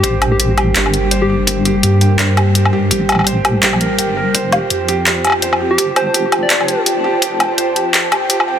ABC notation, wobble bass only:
X:1
M:4/4
L:1/8
Q:"Swing 16ths" 1/4=167
K:Gm
V:1 name="Wobble bass" clef=bass
A,,,4 G,,,4 | G,,,2 G,,6 | A,,,4 B,,,2 G,,,2 | F,,,2 F,,6 |
G,,,4 F,,,4 | F,,,2 F,,6 |]